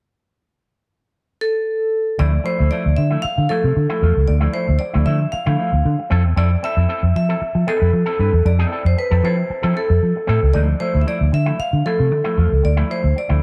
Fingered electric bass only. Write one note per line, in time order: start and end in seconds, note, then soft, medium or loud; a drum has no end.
2.20 2.37 D2 loud
2.60 2.68 D2 medium
2.86 2.94 D2 medium
2.98 3.16 D3 medium
3.24 muted fingered electric bass stroke soft
3.38 3.46 D3 medium
3.64 3.72 C3 medium
3.77 3.86 D3 loud
4.03 4.12 E2 medium
4.17 4.25 C#2 medium
4.29 4.46 D2 loud
4.69 4.77 D2 medium
4.95 5.03 D2 loud
5.07 5.25 D3 medium
5.33 muted fingered electric bass stroke soft
5.47 5.55 D3 medium
5.73 5.81 D2 medium
5.85 5.95 D3 loud
6.11 6.25 F2 loud
6.25 6.33 E2 medium
6.37 6.55 F2 loud
6.77 6.85 F2 medium
7.03 7.11 F2 medium
7.16 7.33 F3 medium
7.42 muted fingered electric bass stroke soft
7.55 7.63 F3 medium
7.82 7.90 F2 medium
7.93 8.03 F3 loud
8.19 8.29 G2 medium
8.33 8.42 E2 medium
8.45 8.63 F2 loud
8.85 8.94 F2 medium
9.11 9.20 F2 medium
9.23 9.42 F3 medium
9.50 muted fingered electric bass stroke soft
9.64 9.72 F3 medium
9.90 9.98 F2 medium
10.03 10.12 F3 medium
10.29 10.38 A2 medium
10.43 10.51 C#2 medium
10.55 10.73 D2 loud
10.95 11.03 D2 medium
11.21 11.29 D2 medium
11.33 11.51 D3 medium
11.59 muted fingered electric bass stroke soft
11.73 11.81 D3 medium
12.00 12.12 C3 medium
12.12 12.21 D3 loud
12.38 12.47 E2 medium
12.52 12.60 C#2 medium
12.64 12.82 D2 loud
13.04 13.12 D2 medium
13.30 13.38 D2 medium